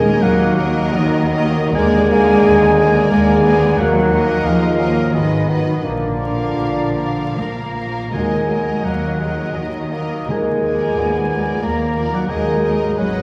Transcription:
Already playing: D#2 D#3 F#3 G#3 A#3 G#4 A#4 D#5 G#5
0.20 D#2 D#3 F#3 A#3 F#4 F#5
0.57 A#3 A#4 D#5
0.94 D#2 D#3 F#3 A#3 D#4 D#5
1.34 A#3 A#4 D#5
1.56 D#3
1.60 A#3
1.65 D4
1.69 A#4
1.74 D#2 D3 G#3 A#3 G#4 A#4 D5 G#5
2.11 A#3 A#4 D5
2.45 D#2 G#3
2.78 A#3 A#4 D5
3.10 D#2 D3 G#3 A#3 G#4 G#5
3.45 A#3 B3 A#4 D5
3.61 D#3
3.65 A#3
3.74 A#4 F#5
3.78 D#2 D#3 F#3 A#3 F#4 F#5
4.12 A#3 A#4 D#5
4.44 D#2 F3 G#3 F4 F5
4.80 F#3 A#3 A#4 D#5
4.95 G#2
5.13 G#1 D#3 F#3 G#3 B3 D#4 B4 D#5
5.49 F#3 B3 B4 D#5
5.67 A#2
5.72 F3
5.76 F4
5.81 D3 A#3 D4 A#4 D5
5.85 A#1 F3 A#3 D5
6.21 F3 A#4 F5
6.58 A#1
6.97 F3 A#4 F5
7.38 A#1 A#3 A#4 A#5
7.42 F3 A#3
7.76 F3 A#4 F5
7.96 D#3
8.01 F#3
8.05 D#4
8.10 D#2 D#3 F#3 G#3 A#4 D#5 G#5
8.14 F#3 A#3 G#4
8.48 F#3 A#4 D#5
8.83 D#2 F#3 A#3 F#4 F#5
9.18 F#3 G#3 G#4 A#4 D#5
9.27 F#4
9.37 F4
9.44 F#4
9.53 D#2 D#3 F#3 D#4 D#5
9.91 F#3 A#3 A#4 D#5
10.12 D#3
10.16 F3
10.26 D#2 D#3 G#3 A#3 G#4 A#4 G#5
10.30 F3 G#3 G#5
10.64 F3 A#4 D5
10.96 D#2 B3
11.29 F3 A#4 D5
11.61 D#2 A#3 A#4 A#5
11.96 F3 A#4 D5
12.12 D#3 F#3 F#4 F#5
12.16 F#3
12.21 D#4
12.25 D#2 F#3 G#3 G#4 A#4 G#5
12.30 D#3 F#3 A#3 D#4 A#4 D#5 G#5
12.63 F#3 A#4 D#5
12.81 G#2
12.86 G#3
12.90 D#4
12.94 G#1 G#3 F#4 B4 F#5
12.99 D#3 F#3 B3 C#4 D#5

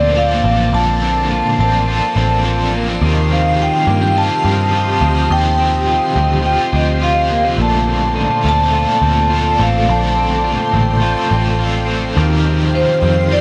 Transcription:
Already playing: D2 A#2 F3 A#3 C4 D4 F4 A4 D5 A5 C6
0.16 F3 C4 D4 F4 F5
0.21 A4
0.44 A1 C4
0.72 A#1 A#2 D3 F3 C4 D4 A4 A5
1.02 C4
1.31 F4
1.58 A1 C4 D4 A4 A5
1.64 F3
1.86 F3 C4 F4
1.90 D4 A4
2.16 A1 C4
2.43 F3 C4 D4 F4
2.48 A4
2.73 A#3
2.88 C4
2.98 D#2 D#3 F3 G4 D#5 F5
3.03 C4 F4 G4
3.31 C4 F5
3.59 F4 G5
3.87 G2 A#3
4.02 C4
4.14 F3 C4 F4 A5
4.20 G4
4.45 G2 C4
4.71 F3 C4 F4
4.77 G4
5.01 D2 C4
5.27 D#2 D#3 F3 G5
5.32 C4 F4 G4 G5
5.58 C4
5.87 F4
6.16 D2 C4
6.42 F3 C4 F4 G5
6.46 F4 G4
6.73 D2 C4 D#5
7.00 F3 C4 F4 F5
7.05 G4
7.30 A#3
7.45 C4
7.57 A#1 A#2 D3 A3 C4 F4 A4 D5 A5
7.62 A5
7.87 C4
8.15 D#4
8.30 F4
8.43 D2 C4 F4 A4
8.47 A3 C4 A5
8.71 A3 C4 F4
8.75 F4 A4
9.02 D2 C4
9.28 A3 C4 F4
9.34 A4
9.59 A1 C4 F5
9.85 A#1 A#2 D3 A3 G5
9.90 C4 F4 A4 A5
10.16 C4
10.44 F4
10.73 A1 C4
11.00 A3 C4 F4
11.05 A4
11.30 A1 C4
11.58 A3 C4 F4
11.63 A4
11.87 C4
12.14 D#2 D#3 F3 D#4 G4 F5 C6
12.19 C4 F4 G4
12.45 C4
12.74 F4 C5
13.02 F2 C4
13.29 F3 C4 F4 D5
13.34 G4

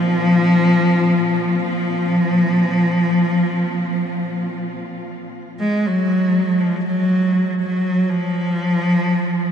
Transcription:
Already playing: A#2 F3 C4 F4
1.65 F3
5.60 G#3
5.86 F#3
6.60 F3
6.86 F#3
7.62 F#3
8.09 F3

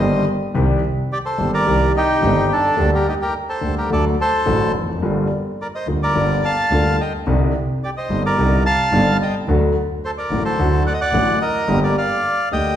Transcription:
Already playing: C5 D#5
0.00 G1 G2 D#3 G3 A#3 G4
0.54 C2 C3 D#3 G3 C4 G4
1.13 G4 D5
1.25 A4 C5
1.38 G1 G2 D#3 G3 C4 G4
1.54 A#4 D5
1.66 C2 C3 D#3 G3 C4 G4
1.96 D#4 G4
2.21 G1 G2 D#3 G3 C4 G4
2.52 D4 A4
2.76 D2 D3 G3 A#3 G4
2.95 G4 A#4
3.08 D#4 G4
3.21 G4 A#4
3.49 A4 C5
3.61 D2 D3 G3 A#3 G4
3.78 G4 A#4
3.89 D2 D3 F#3 A3 F#4 A4 D5
4.21 A4 C5
4.46 A1 A2 D3 F#3 A3 F#4
4.74 F1
4.82 E2
4.88 F2
4.95 F#2
5.02 G1 G2 D3 G3 A#3 F4
5.62 A#4 D5
5.75 C5 D#5
5.87 D2 D3 G3 A#3 F4
6.03 A#4 D5
6.15 G1 G2 D3 G3 A#3 F4
6.45 F5 A5
6.70 D2 D3 G3 A#3 F4
7.01 D#5 G5
7.27 C2 C3 D3 G3 C4 D#4
7.84 G4 D5
7.97 C5 D#5
8.10 G1 G2 D3 G3 C4 D#4
8.26 A#4 D5
8.37 C2 C3 D3 G3 C4 D#4
8.66 F5 A5
8.92 G1 G2 D3 G3 C4 D#4
9.22 D#5 G5
9.47 D2 D3 F#3 A3 F#4
10.05 A4 C5
10.18 A#4 D5
10.30 A1 A2 D3 F#3 A3 F#4
10.45 A4 C5
10.58 D2 D3 F#3 A3 F#4
10.86 D5 F#5
10.94 D#5
11.01 D5 F#5
11.13 A1 A2 D3 F#3 A3 F#4
11.42 A#4 D#5
11.68 G1 G2 D3 A3 A#3 G4
11.83 A#4 D5
11.98 D5 F5
12.51 D2 D3 A3 A#3 G4 D#5 G5

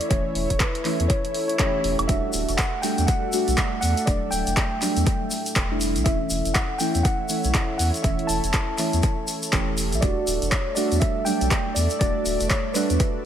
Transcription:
Already playing: E4 A4 C#5 D5 E5
0.01 closed hi-hat
0.09 E1 E3 A3 C#4 E4 C#5, kick, closed hi-hat
0.35 E1, open hi-hat
0.50 E1, kick, closed hi-hat
0.59 B4, kick, clap, closed hi-hat
0.75 closed hi-hat
0.84 E3 A3 C#4 E4, clap, open hi-hat
1.00 E2, closed hi-hat
1.08 C#5, kick, closed hi-hat, swell
1.25 closed hi-hat
1.34 open hi-hat
1.48 C#5, closed hi-hat
1.58 E3 A3 C#4 G4 C#5, kick, clap, closed hi-hat
1.84 E1, open hi-hat
1.99 E1, closed hi-hat, high woodblock
2.08 E1 G3 A3 D4 F#4 D5 E5, kick, closed hi-hat, shaker
2.33 D1, open hi-hat, shaker
2.49 E1, closed hi-hat, shaker
2.57 F#5, kick, clap, closed hi-hat, shaker
2.82 G3 A3 D4 F#4 G5, open hi-hat, shaker
2.98 E2, closed hi-hat, shaker
3.07 F#5, kick, closed hi-hat, shaker
3.32 G3 A3 D4 F#4, open hi-hat, shaker
3.48 B1, closed hi-hat, shaker
3.57 kick, clap, closed hi-hat, shaker
3.81 E2 F#5, open hi-hat, shaker
3.97 closed hi-hat, shaker
4.06 E1 F#3 G3 A3 D4 D5, kick, closed hi-hat, shaker
4.31 D1 G5, open hi-hat, shaker
4.47 E1, closed hi-hat, shaker
4.57 kick, clap, closed hi-hat, shaker
4.81 F#3 G3 A3 D4, clap, open hi-hat, shaker
4.97 E2, closed hi-hat, shaker
5.06 kick, closed hi-hat, shaker
5.31 open hi-hat, shaker
5.46 closed hi-hat, shaker
5.55 E1, kick, clap, closed hi-hat, shaker
5.71 G3 A3 D4 E4
5.81 open hi-hat, shaker
5.96 B1, closed hi-hat, shaker
6.04 E1 E3 A3 C#4 E4 A4 C#5 E5, kick, closed hi-hat, shaker
6.30 E1, open hi-hat, shaker
6.45 E1, closed hi-hat, shaker
6.54 F#5, kick, clap, closed hi-hat, shaker
6.78 E3 A3 C#4 E4 G5, open hi-hat, shaker
6.95 E2, closed hi-hat, shaker
7.03 F#5, kick, closed hi-hat, shaker
7.29 E3 A3 C#4 E4, open hi-hat, shaker
7.44 B1, closed hi-hat, shaker
7.54 kick, clap, closed hi-hat, shaker
7.78 E2 F#5, open hi-hat, shaker
7.94 closed hi-hat, shaker
8.03 E1 E3 A3 C#4 E4 E5, kick, closed hi-hat, shaker
8.19 closed hi-hat
8.27 E1 A5, open hi-hat, shaker
8.44 E1, closed hi-hat, shaker
8.53 kick, clap, closed hi-hat, shaker
8.78 E3 A3 C#4 E4, clap, open hi-hat, shaker
8.93 E2, closed hi-hat, shaker
9.03 kick, closed hi-hat, shaker
9.28 open hi-hat, shaker
9.43 closed hi-hat, shaker
9.52 E1 E3 A3 C#4 G4, kick, clap, closed hi-hat, shaker
9.78 open hi-hat, shaker
9.92 B1 E5, closed hi-hat, shaker
10.01 E1 G3 A3 D4 F#4 D5 E5, kick, closed hi-hat, shaker
10.27 D1, open hi-hat, shaker
10.42 E1, closed hi-hat, shaker
10.51 C#5, kick, clap, closed hi-hat, shaker
10.75 G3 A3 D4 F#4 D5, open hi-hat, shaker
10.92 E2, closed hi-hat, shaker
11.00 E5, kick, closed hi-hat, shaker
11.25 F#3 G3 A3 D4 G5, open hi-hat, shaker
11.41 B1, closed hi-hat, shaker
11.51 kick, clap, closed hi-hat, shaker
11.74 E2 D5, open hi-hat, shaker
11.90 closed hi-hat, shaker
11.99 E1 G3 A3 D4 F#4 D5, kick, closed hi-hat, shaker
12.26 D1, open hi-hat, shaker
12.40 E1, closed hi-hat, shaker
12.49 C#5, kick, clap, closed hi-hat, shaker
12.74 G3 A3 D4 F#4 B4, clap, open hi-hat, shaker
12.90 E2, closed hi-hat, shaker
13.00 kick, closed hi-hat, shaker

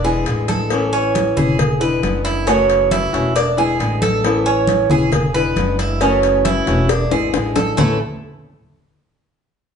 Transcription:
Already playing: E1
0.04 D3 G#3 B3 E4 G#4, high conga
0.26 A1 D3 G#3 B3 E4, cowbell, high conga
0.48 A4, cowbell, high conga
0.70 E3 B3 C#4 E4, cowbell, high conga
0.93 C#4, high conga
1.15 cowbell, high conga
1.37 E1 B3 C#4 E4 G#4, high conga, low conga
1.59 muted nylon-string guitar stroke, cowbell, high conga, low conga
1.80 D3 G#3 B3 E4 B4, high conga
2.02 F#1 D3 G#3 B3 E4, cowbell, high conga
2.25 E4, cowbell, high conga
2.47 C#3 E3 A3 C#4 F#4, cowbell, high conga
2.69 cowbell, high conga
2.91 E4, cowbell, high conga
3.13 E1 E3 A3 C#4 F#4, cowbell
3.35 D4, muted nylon-string guitar stroke, cowbell, high conga
3.57 D3 G#3 B3 E4 G#4, high conga
3.79 A1 D3 G#3 B3 E4, cowbell, high conga
4.02 A4, cowbell, high conga
4.24 E3 B3 C#4 E4, cowbell, high conga
4.46 C#4, high conga
4.67 cowbell, high conga
4.90 E1 B3 C#4 E4 G#4, high conga, low conga
5.12 muted nylon-string guitar stroke, cowbell, high conga, low conga
5.34 D3 G#3 B3 E4 B4, high conga
5.56 F#1 D3 G#3 B3 E4, cowbell, high conga
5.79 E4, cowbell, high conga
6.00 C#3 E3 A3 C#4 F#4, cowbell, high conga
6.23 cowbell, high conga
6.45 E4, cowbell, high conga
6.67 E1 E3 A3 C#4 F#4, cowbell
6.89 D4, muted nylon-string guitar stroke, cowbell, high bongo, high conga
7.11 G#1 D3 G#3 B3 E4 G#4, low bongo, high conga
7.33 A1 D3 G#3 B3 E4, cowbell, low bongo, high conga
7.56 A4, cowbell, low bongo, high conga
7.77 A1 A2 E3 A3 B3 C#4 E4 A4, low bongo, low conga

